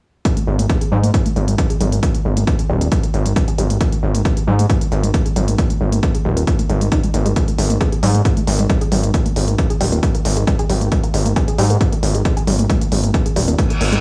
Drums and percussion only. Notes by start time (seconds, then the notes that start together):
0.25 kick, closed hi-hat
0.37 closed hi-hat
0.59 closed hi-hat
0.70 kick, closed hi-hat
0.81 closed hi-hat
1.04 closed hi-hat
1.14 kick, closed hi-hat
1.26 closed hi-hat
1.36 closed hi-hat
1.48 closed hi-hat
1.58 kick, closed hi-hat
1.70 closed hi-hat
1.81 closed hi-hat
1.92 closed hi-hat
2.03 kick, closed hi-hat
2.15 closed hi-hat
2.37 closed hi-hat
2.47 kick, closed hi-hat
2.59 closed hi-hat
2.81 closed hi-hat
2.92 kick, closed hi-hat
3.04 closed hi-hat
3.14 closed hi-hat
3.26 closed hi-hat
3.36 kick, closed hi-hat
3.48 closed hi-hat
3.58 closed hi-hat
3.70 closed hi-hat
3.81 kick, closed hi-hat
3.92 closed hi-hat
4.15 closed hi-hat
4.25 kick, closed hi-hat
4.37 closed hi-hat
4.59 closed hi-hat
4.70 kick, closed hi-hat
4.81 closed hi-hat
4.92 closed hi-hat
5.04 closed hi-hat
5.14 kick, closed hi-hat
5.26 closed hi-hat
5.36 closed hi-hat
5.48 closed hi-hat
5.58 kick, closed hi-hat
5.70 closed hi-hat
5.92 closed hi-hat
6.03 kick, closed hi-hat
6.15 closed hi-hat
6.37 closed hi-hat
6.47 kick, closed hi-hat
6.59 closed hi-hat
6.70 closed hi-hat
6.81 closed hi-hat
6.92 kick, closed hi-hat
7.03 closed hi-hat
7.14 closed hi-hat
7.26 closed hi-hat
7.36 kick, closed hi-hat
7.48 closed hi-hat
7.58 open hi-hat
7.70 closed hi-hat
7.81 kick, closed hi-hat
7.92 closed hi-hat
8.03 open hi-hat
8.15 closed hi-hat
8.25 kick, closed hi-hat
8.37 closed hi-hat
8.47 open hi-hat
8.59 closed hi-hat
8.70 kick, closed hi-hat
8.81 closed hi-hat
8.92 open hi-hat
9.04 closed hi-hat
9.14 kick, closed hi-hat
9.26 closed hi-hat
9.36 open hi-hat
9.48 closed hi-hat
9.58 kick, closed hi-hat
9.70 closed hi-hat
9.81 open hi-hat
9.92 closed hi-hat
10.03 kick, closed hi-hat
10.15 closed hi-hat
10.25 open hi-hat
10.37 closed hi-hat
10.47 kick, closed hi-hat
10.59 closed hi-hat
10.70 open hi-hat
10.81 closed hi-hat
10.92 kick, closed hi-hat
11.04 closed hi-hat
11.14 open hi-hat
11.26 closed hi-hat
11.36 kick, closed hi-hat
11.48 closed hi-hat
11.58 open hi-hat
11.70 closed hi-hat
11.81 kick, closed hi-hat
11.93 closed hi-hat
12.03 open hi-hat
12.15 closed hi-hat
12.25 kick, closed hi-hat
12.37 closed hi-hat
12.47 open hi-hat
12.59 closed hi-hat
12.70 kick, closed hi-hat
12.81 closed hi-hat
12.92 open hi-hat
13.04 closed hi-hat
13.14 kick, closed hi-hat
13.26 closed hi-hat
13.36 open hi-hat
13.48 closed hi-hat
13.58 kick, closed hi-hat
13.70 closed hi-hat
13.81 open hi-hat
13.92 closed hi-hat